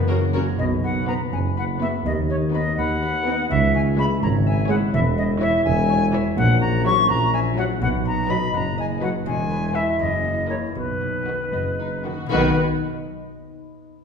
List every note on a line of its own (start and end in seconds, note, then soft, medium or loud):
0.00 0.46 F#1 medium
0.00 0.46 F#2 medium
0.00 0.60 F#2 medium
0.00 0.61 C#3 soft
0.00 0.34 C#4 medium
0.00 0.20 F#4 soft
0.00 0.34 A#4 soft
0.00 0.32 C#5 soft
0.00 0.21 F#5 medium
0.08 0.61 A#3 soft
0.08 0.17 C#4 soft
0.08 0.17 F#4 soft
0.08 0.17 A#4 soft
0.21 1.80 F#4 soft
0.34 0.43 C#4 soft
0.34 0.43 F#4 soft
0.34 0.42 A#4 soft
0.34 0.61 C#5 soft
0.46 0.61 A#4 soft
0.58 1.17 B1 medium
0.58 1.17 B2 medium
0.58 2.07 B2 medium
0.58 0.64 D#5 medium
0.84 3.52 B3 soft
0.84 1.07 F#5 medium
1.07 1.26 B3 medium
1.07 1.26 F#4 medium
1.07 1.26 B4 medium
1.07 1.56 B4 soft
1.07 1.13 A#5 medium
1.32 1.90 F#1 medium
1.32 1.90 F#2 medium
1.32 3.52 F#5 soft
1.32 1.38 G#5 medium
1.57 2.53 B4 soft
1.57 1.64 F#5 medium
1.81 1.99 B3 medium
1.81 1.99 F#4 medium
1.81 3.52 F#4 soft
1.81 1.99 B4 medium
1.81 1.87 E5 medium
2.05 2.63 D#2 medium
2.05 3.53 D#3 medium
2.05 2.11 D#5 medium
2.29 3.26 D#4 soft
2.29 2.35 C#5 medium
2.53 2.72 B3 medium
2.53 2.72 D#4 medium
2.53 2.72 B4 medium
2.53 3.01 B4 soft
2.53 2.76 D#5 medium
2.77 3.35 D#2 medium
2.77 3.36 D#2 medium
2.77 3.48 F#5 medium
2.77 3.52 B5 medium
3.02 3.52 B4 soft
3.26 3.44 B3 medium
3.26 3.44 D#4 medium
3.26 3.52 D#4 medium
3.26 3.44 B4 medium
3.50 4.07 C#2 medium
3.50 4.08 C#2 medium
3.50 4.96 C#3 medium
3.50 3.73 E5 medium
3.74 6.60 C#4 soft
3.74 3.81 G#5 medium
3.98 4.16 G#3 medium
3.98 4.16 E4 medium
3.98 4.16 C#5 medium
3.98 4.45 E5 soft
3.98 4.05 B5 medium
4.22 4.79 G#1 medium
4.22 4.79 G#2 medium
4.22 5.40 C#5 medium
4.22 4.28 A#5 medium
4.46 6.13 E5 soft
4.46 4.68 G#5 medium
4.69 4.88 G#3 medium
4.69 4.87 E4 medium
4.69 5.17 E4 medium
4.69 4.87 C#5 medium
4.69 4.75 F#5 medium
4.93 5.50 E1 medium
4.93 5.51 E2 medium
4.93 6.39 E3 medium
4.93 4.99 E5 medium
5.17 7.83 E4 soft
5.17 5.23 D#5 medium
5.40 5.59 E3 medium
5.40 5.59 E4 medium
5.40 5.59 C#5 medium
5.40 5.88 C#5 medium
5.40 5.63 E5 medium
5.64 6.22 E1 medium
5.64 6.22 E2 medium
5.64 6.06 G#5 loud
5.64 7.83 E6 medium
5.90 7.83 C#5 medium
6.13 6.31 E3 medium
6.13 6.31 E4 medium
6.13 6.31 C#5 medium
6.13 6.84 E5 medium
6.37 6.94 A#1 medium
6.37 6.94 A#2 medium
6.37 7.83 A#2 medium
6.37 6.60 F#5 loud
6.61 7.83 C#4 medium
6.61 6.84 A#5 medium
6.85 7.03 F#3 medium
6.85 7.03 E4 medium
6.85 7.03 C#5 medium
6.85 7.32 E5 medium
6.85 7.09 C#6 loud
7.09 7.66 A#1 medium
7.09 7.67 A#2 medium
7.09 8.53 F#5 medium
7.09 7.33 A#5 medium
7.33 7.83 E5 medium
7.33 7.39 G#5 medium
7.57 7.75 F#3 medium
7.57 7.75 E4 medium
7.57 9.01 F#4 medium
7.57 7.75 C#5 medium
7.57 7.63 F#5 medium
7.81 8.38 B1 medium
7.81 8.39 B1 medium
7.81 9.28 B2 medium
7.81 8.39 B2 medium
7.81 7.88 F#5 medium
8.05 9.49 B3 soft
8.05 8.31 A#5 medium
8.29 8.48 F#3 medium
8.29 8.47 D#4 medium
8.29 8.47 B4 medium
8.29 8.77 D#5 soft
8.29 8.53 B5 medium
8.54 9.11 F#1 medium
8.54 9.11 F#2 medium
8.54 9.28 F#5 medium
8.54 8.77 A#5 medium
8.78 9.28 D#5 soft
8.78 8.85 G#5 medium
9.01 9.20 F#3 medium
9.01 9.19 D#4 medium
9.01 9.28 F#4 soft
9.01 9.20 B4 medium
9.01 9.08 F#5 medium
9.26 9.84 E1 medium
9.26 10.01 E2 medium
9.26 9.84 E2 medium
9.26 9.76 G#5 medium
9.50 10.01 B3 soft
9.74 9.93 E3 soft
9.74 9.93 E4 soft
9.74 10.48 E4 soft
9.74 9.93 B4 soft
9.74 9.99 E5 medium
9.74 10.78 E5 soft
9.99 10.60 F#1 medium
9.99 10.77 F#2 soft
9.99 10.60 F#2 soft
9.99 10.49 D#5 medium
10.24 10.77 A#3 soft
10.49 10.69 E3 soft
10.49 10.68 C#4 soft
10.49 10.77 E4 soft
10.49 10.68 A#4 soft
10.49 10.55 C#5 medium
10.49 10.77 C#5 soft
10.75 11.37 B1 soft
10.75 12.26 B2 soft
10.75 11.38 B2 soft
10.75 12.03 B4 soft
11.01 12.29 B3 soft
11.26 11.46 D#3 soft
11.26 11.46 B3 soft
11.26 11.46 F#4 soft
11.26 11.78 B4 soft
11.53 12.16 F#1 soft
11.53 12.16 F#2 soft
11.53 11.61 B3 soft
11.53 12.31 D#5 soft
11.79 11.87 D#4 soft
11.79 12.30 B4 soft
12.05 12.25 D#3 soft
12.05 12.31 D#4 soft
12.05 12.31 F#4 soft
12.05 12.25 F#4 soft
12.26 12.60 B2 soft
12.26 12.60 B3 soft
12.31 12.60 B1 medium
12.31 12.53 B1 medium
12.31 12.60 B2 medium
12.31 12.60 D#3 medium
12.31 12.60 B3 soft
12.31 12.60 D#4 medium
12.31 12.60 F#4 medium
12.31 12.60 B4 medium
12.31 12.60 B4 soft
12.37 12.60 D#5 soft